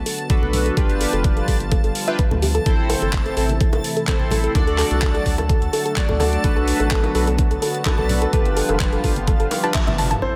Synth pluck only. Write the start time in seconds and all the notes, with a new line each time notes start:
0.06 A4
0.30 A4
0.42 A4
0.66 A4
0.77 A4
1.01 A4
1.13 A4
1.37 A4
1.48 A4
1.72 A4
1.84 A4
2.07 E5
2.19 B4
2.31 A4
2.42 G4
2.55 A4
2.66 A4
2.90 A4
3.02 A4
3.26 A4
3.37 A4
3.61 A4
3.73 A4
3.97 A4
4.08 A4
4.31 A4
4.44 A4
4.67 A4
4.78 A4
5.02 A4
5.14 A4
5.38 A4
5.49 A4
5.73 A4
5.85 A4
6.09 A4
6.20 A4
6.44 A4
6.56 A4
6.80 A4
6.91 A4
7.15 A4
7.27 A4
7.51 A4
7.62 A4
7.86 A4
7.98 A4
8.22 A4
8.33 A4
8.57 A4
8.69 A4
8.93 A4
9.04 A4
9.28 A4
9.40 A4
9.63 A5
9.75 E5
9.87 E5
9.98 A5
10.11 A5